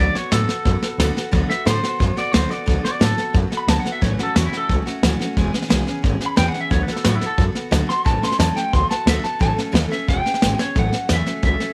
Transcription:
Already playing: D3
0.00 D2 F#3 B3 F#4 A4 D5
0.14 B3 F#4 A4 C#5, muted upright bass stroke, snare
0.31 A2 D3 F#3 B3 F#4 A4, snare, hi-hat pedal
0.49 B3 F#4 A4, muted upright bass stroke, snare
0.65 F#2 F#3 B3 F#4 A4, kick, snare
0.82 B3 F#4 A4, muted upright bass stroke, snare
0.98 D2 D3 F#3 B3 F#4 A4, snare, hi-hat pedal
1.15 B3 F#4 A4, snare
1.31 D2 D3 F#3 B3 F#4 A4, kick, snare
1.49 B3 F#4 A4 E5, muted upright bass stroke, snare
1.65 A2 D3 F#3 B3 F#4 A4 C5, snare, hi-hat pedal
1.83 B3 F#4 A4, snare
1.99 F#2 F#3 B3 F#4 A4, kick, snare
2.16 B3 F#4 A4 D5, snare
2.33 D2 D3 F#3 B3 F#4 A4 C5, snare, hi-hat pedal
2.50 B3 F#4 A4 D5, snare
2.66 D2 D3 F#3 B3 F#4 A4, kick, snare
2.83 B3 F#4 A4 D5, muted upright bass stroke, snare
2.99 A2 D3 F#3 B3 F#4 A4, snare, hi-hat pedal
3.17 B3 F#4 A4, muted upright bass stroke, snare
3.33 F#2 F#3 B3 F#4 A4, kick, snare
3.50 B3 F#4 A4, muted upright bass stroke, snare
3.57 B5
3.67 D2 D3 F#3 B3 F#4 A4 A5, snare, hi-hat pedal
3.80 F#5, muted upright bass stroke
3.85 B3 F#4 A4, snare
3.92 E5
4.01 A1 A2 E3 F#3 A3 C#4 F#4 C#5, kick, snare
4.13 B4
4.19 F#3 A3 C#4 F#4, snare
4.23 A4
4.35 E2 A2 E3 F#3 A3 C#4 F#4, snare, hi-hat pedal
4.46 E4
4.52 F#3 A3 C#4 F#4, snare
4.57 A4
4.69 C#2 F#3 A3 C#4 F#4, kick, snare
4.85 F#3 A3 C#4 F#4, muted upright bass stroke, snare
5.03 D2 A2 E3 F#3 A3 C#4 F#4, snare, hi-hat pedal
5.20 F#3 A3 C#4 F#4, snare
5.37 E1 E3 G#3 B3 C#4 G#4, kick, snare
5.53 B3 C#4 G#4, snare
5.62 snare
5.69 B1 E3 G#3 B3 C#4 G#4, snare, hi-hat pedal
5.86 B3 C#4 G#4, snare
6.02 G#1 G#3 B3 C#4 G#4, kick, snare
6.20 B3 C#4 G#4, muted upright bass stroke, snare
6.26 B5
6.36 E2 E3 G#3 B3 C#4 G#4 G5, snare, hi-hat pedal
6.48 F#5
6.53 B3 C#4 G#4, snare
6.61 E5
6.70 D2 D3 F#3 B3 F#4 A4 C#5, kick, snare
6.83 B4
6.87 B3 F#4 A4, muted upright bass stroke, snare
6.93 A4, snare
7.04 A2 D3 F#3 B3 F#4 A4, snare, hi-hat pedal
7.15 E4
7.21 B3 F#4 A4, muted upright bass stroke, snare
7.26 A4
7.38 F#2 F#3 B3 F#4 A4, kick, snare
7.55 B3 F#4 A4, muted upright bass stroke, snare
7.71 D2 D3 F#3 B3 F#4 A4, snare, hi-hat pedal
7.88 B3 F#4 A4 C6, snare
8.05 A1 A2 E3 F#3 A3 C#4 A4 A5, kick, snare
8.22 F#3 A3 C#4 A4 C6, muted upright bass stroke, snare
8.32 snare
8.39 E2 A2 E3 F#3 A3 C#4 A4 A5, snare, hi-hat pedal
8.55 F#3 A3 C#4 A4 G5, snare
8.73 D2 F#3 B3 F#4 A4 C6, kick, snare
8.89 B3 F#4 A4 A5, muted upright bass stroke, snare
9.06 D2 D3 F#3 B3 F#4 A4 E5, snare, hi-hat pedal
9.23 B3 F#4 A4 A5, snare
9.39 A1 A2 E3 F#3 A3 C#4 A4 A5, kick, snare
9.56 F#3 A3 C#4 A4, muted upright bass stroke, snare
9.72 D#2 A2 E3 F#3 A3 C#4 A4, snare, hi-hat pedal
9.88 F#3 A3 C#4 A4 E5, muted upright bass stroke, snare
10.07 E1 G#3 B3 C#4 G#4 G5, kick, snare
10.23 B3 C#4 G#4, muted upright bass stroke, snare
10.34 snare
10.41 G#1 E3 G#3 B3 C#4 G#4, snare, hi-hat pedal
10.58 B3 C#4 G#4 C#5, snare
10.75 A1 A2 E3 F#3 A3 C#4 A4 F#5, kick, snare
10.92 F#3 A3 C#4 A4, muted upright bass stroke, snare
11.08 E2 A2 E3 F#3 A3 C#4 A4, snare, hi-hat pedal
11.13 E5
11.26 F#3 A3 C#4 A4, snare
11.42 C#2 F#3 A3 C#4 A4 E5, kick, snare
11.60 F#3 A3 C#4 A4, muted upright bass stroke, snare

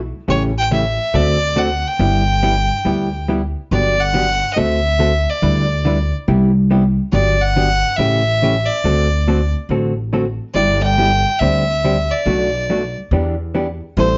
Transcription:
Already playing: B1
0.28 A1 C#3 E3 A3 C#4 G4 C#5
0.58 G5
0.71 C#3 E3 A3 C#4 G4 E5
1.14 D2 D3 A3 C4 F#4 A4 D5
1.56 D3 A3 C4 F#4 A4 F#5
1.88 G5
1.99 G1 G3 B3 E4 G4
2.43 G3 B3 E4 G4
2.85 D2 G3 B3 E4 G4
3.28 G3 B3 E4 G4
3.71 G1 D3 F#3 B3 D4 G4 D5
4.00 F#5
4.14 D3 F#3 B3 D4 G4
4.53 D2 D3 A3 C4 F#4 D#5
4.57 A4 E5
4.99 D3 A3 C4 F#4 A4
5.30 D5
5.42 D2 D3 G3 D4 E4 B4
5.85 D3 G3 D4 E4 B4
6.28 C2 C3 G3 B3 E4 G4
6.71 C3 G3 B3 E4 G4
7.12 G1 D3 F#3 B3 D4 G4 D5
7.42 F#5
7.56 D3 F#3 B3 D4 G4
7.97 A1 C#3 E3 A3 C#4 G4 E5
8.42 C#3 E3 A3 C#4 G4
8.66 D5
8.84 D2 D3 A3 C4 F#4 A4
9.28 D3 A3 C4 F#4 A4
9.69 A1 D3 A3 C4 F#4 A4
10.13 D3 A3 C4 F#4 A4
10.54 G1 G3 B3 E4 G4 D5
10.83 G5
10.98 G3 B3 E4 G4
11.39 D2 D3 G3 C4 D4 G4 E5
11.85 D3 G3 C4 D4 G4
12.11 D5
12.26 B1 B2 F#3 A3 D4 F#4
12.70 B2 F#3 A3 D4 F#4
13.11 E2 E3 B3 D4 G4
13.54 E3 B3 D4 G4
13.97 A1 E3 G3 C4 E4 A4 C5

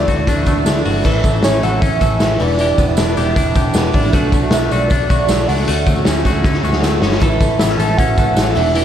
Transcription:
Already playing: E3 A3 D4 D5
0.00 A3 D4 E4
0.08 D2 F#4, kick, closed hi-hat, tambourine
0.27 D2 D3 F#3 A3 D4 E4, kick, closed hi-hat, tambourine
0.46 D2 D3 F#3 A3 D4 E4, kick, closed hi-hat, tambourine
0.65 D2 D4, snare, closed hi-hat, tambourine
0.76 A3 D4 E4
0.85 G1 F#4, open hi-hat, tambourine
1.04 A1 A2 E3 A3 C#4 E4 A4, kick, crash, tambourine
1.24 A1 A3, kick, closed hi-hat, tambourine
1.32 A3 C#4 E4
1.43 A1 C#4 C#5, snare, closed hi-hat, tambourine
1.61 A1 E3 A3 C#4 E4 A4 F#5, closed hi-hat, tambourine
1.81 A1 C#4 E5, kick, closed hi-hat, tambourine
2.00 A1 E3 A3 C#4 E4 A4, kick, closed hi-hat, tambourine
2.20 A1 E3 A3 C#4 E4, snare, closed hi-hat, tambourine
2.39 E1 E2 B2 E3 G3 D4 E4 D5, open hi-hat
2.59 E3 G4, closed hi-hat, tambourine
2.78 E1 B3, kick, closed hi-hat, tambourine
2.88 E3 G3 D4 E4
2.97 E1 D4, snare, closed hi-hat, tambourine
3.16 E1 E3 G3 D4 E4 G4, snare, closed hi-hat, tambourine
3.36 E1 D4, kick, closed hi-hat, tambourine
3.53 E1 E3 G3 D4 E4 G4, kick, closed hi-hat, tambourine
3.73 E1 E3 G3 B3 D4 E4, snare, closed hi-hat, tambourine
3.93 A1 D4, kick, open hi-hat, tambourine
4.03 E3 G3 D4 E4
4.13 B1 B2 F#3 A3 D4 F#4, kick, closed hi-hat, tambourine
4.32 B1 A3, kick, closed hi-hat, tambourine
4.41 A3 D4 F#4
4.51 B1 D4 E5, snare, closed hi-hat, tambourine
4.64 E5
4.70 B1 F#3 A3 D4 F#4 D5, closed hi-hat, tambourine
4.90 B1 D4, kick, closed hi-hat, tambourine
5.09 B1 F#3 A3 D4 F#4, kick, closed hi-hat, tambourine
5.18 D5
5.28 B1 F#3 A3 D4 F#4, snare, closed hi-hat, tambourine
5.47 C#2 D4 F#5, open hi-hat, tambourine
5.58 A3 D4 F#4
5.68 D2 D3 A3 C#4 F#4, closed hi-hat
5.86 D2 A3, kick, closed hi-hat, tambourine
5.96 A3 C#4 F#4
6.05 D2 C#4, snare, closed hi-hat, tambourine
6.24 D2 D3 A3 C#4 F#4, kick, snare, closed hi-hat, tambourine
6.43 D2 C#4, kick, snare, tambourine
6.53 snare
6.63 D2 D3 A3 C#4 F#4, tambourine
6.73 snare
6.82 D2 D3 A3 C#4, snare, tambourine
6.86 F#4
7.02 G1 C#4, snare, tambourine
7.10 A3 C#4 F#4, snare
7.20 A1 A2 E3 A3 C#4 E4 A4, kick, closed hi-hat, tambourine
7.40 A1 A3, kick, closed hi-hat, tambourine
7.49 A3 C#4 E4
7.59 A1 B3 E5, snare, closed hi-hat, tambourine
7.71 C#4
7.77 A1 E3 A3 C#4 E4 A4 A5, closed hi-hat, tambourine
7.98 A1 C#4 F#5, kick, closed hi-hat, tambourine
8.16 A1 E3 A3 C#4 E4 A4, kick, closed hi-hat, tambourine
8.36 A1 E3 A3 C#4 E4, snare, closed hi-hat, tambourine
8.55 E1 E2 B2 E3 G3 D4 E4 E5, open hi-hat
8.75 E3 G4, closed hi-hat, tambourine

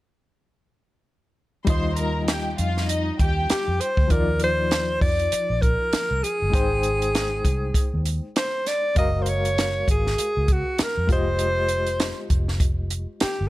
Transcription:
1.65 D#2 G3 D#4 F4 C5 C6, kick, closed hi-hat
1.70 D#5
1.96 A#4 A#5, closed hi-hat
2.28 G4 G5, snare, closed hi-hat
2.58 F2 F4 F5, closed hi-hat
2.77 snare
2.88 D#4 D#5, closed hi-hat
3.19 D#2 G4 G5, kick, closed hi-hat
3.50 G4, muted fingered electric bass stroke, snare, closed hi-hat
3.68 F2
3.81 C5, closed hi-hat
3.97 D2, kick
4.08 D#2 F3 D#4 F4 A#4, kick, closed hi-hat
4.13 D5
4.40 closed hi-hat
4.44 C5
4.71 snare, closed hi-hat
5.01 F2 D5, kick, open hi-hat
5.19 closed hi-hat
5.32 muted fingered electric bass stroke, closed hi-hat
5.50 A#1
5.62 A#4, kick, closed hi-hat
5.93 muted fingered electric bass stroke, snare, closed hi-hat
6.11 C2
6.23 G#4, closed hi-hat
6.42 G1
6.50 G#1 G#3 D#4 G5, kick
6.54 C5, closed hi-hat
6.83 closed hi-hat
7.02 closed hi-hat
7.15 snare, closed hi-hat
7.45 C2, kick, closed hi-hat
7.74 kick, closed hi-hat
7.94 D#2
8.06 closed hi-hat
8.36 C5, snare, closed hi-hat
8.66 D5, snare, closed hi-hat
8.95 F#1 G#3 F#4 D#5 F5, kick, closed hi-hat
9.00 A#4
9.22 C5, closed hi-hat
9.29 C#5
9.45 closed hi-hat
9.58 snare, closed hi-hat
9.88 G#1 G#4, kick, closed hi-hat
10.07 snare
10.18 muted fingered electric bass stroke, closed hi-hat
10.37 C#2
10.48 kick, closed hi-hat
10.53 F#4
10.79 muted fingered electric bass stroke, snare, closed hi-hat
10.83 A#4
10.97 F2
11.07 F1 G#3 F4 G4, kick, closed hi-hat
11.13 C5 D#5
11.39 closed hi-hat
11.69 closed hi-hat
11.87 closed hi-hat
12.00 snare, closed hi-hat
12.30 F1, kick, closed hi-hat
12.48 snare
12.60 kick, closed hi-hat
12.90 closed hi-hat
13.20 G4, muted fingered electric bass stroke, snare, closed hi-hat
13.41 G1

